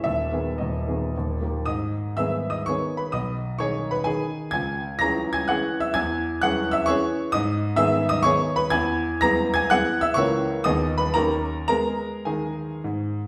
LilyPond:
<<
  \new Staff \with { instrumentName = "Grand piano" } { \time 3/4 \key gis \minor \tempo 4 = 124 e''4 dis''4 r4 | <dis'' dis'''>4 \tuplet 3/2 { <e'' e'''>4 <dis'' dis'''>8 <cis'' cis'''>4 <b' b''>8 } | <dis'' dis'''>4 \tuplet 3/2 { <cis'' cis'''>4 <b' b''>8 } <gis' gis''>4 | <gis'' gis'''>4 \tuplet 3/2 { <ais'' ais'''>4 <gis'' gis'''>8 <fis'' fis'''>4 <e'' e'''>8 } |
<gis'' gis'''>4 \tuplet 3/2 { <fis'' fis'''>4 <e'' e'''>8 } <cis'' cis'''>4 | <dis'' dis'''>4 \tuplet 3/2 { <e'' e'''>4 <dis'' dis'''>8 <cis'' cis'''>4 <b' b''>8 } | <gis'' gis'''>4 \tuplet 3/2 { <ais'' ais'''>4 <gis'' gis'''>8 <fis'' fis'''>4 <e'' e'''>8 } | <cis'' cis'''>4 \tuplet 3/2 { <dis'' dis'''>4 <b' b''>8 } <ais' ais''>4 |
<ais' ais''>4 <gis' gis''>4 r4 | }
  \new Staff \with { instrumentName = "Grand piano" } { \time 3/4 \key gis \minor <dis,, dis,>8 <dis b gis'>8 <dis,, dis,>8 <dis b gis'>8 <dis,, dis,>8 <dis ais g'>8 | gis,4 <dis b gis'>4 <dis b gis'>4 | b,,4 <dis dis' gis'>4 <dis dis'>4 | cis,4 <e cis' gis'>4 <e cis' gis'>4 |
e,4 <e cis' gis'>4 <e cis' gis'>4 | gis,4 <dis b gis'>4 <dis b gis'>4 | e,4 <e b gis'>4 <e b gis'>4 | <cis, e ais ais'>4 <dis, dis b gis'>4 <dis, dis cis' g'>4 |
<gis b gis'>4 dis4 gis,4 | }
>>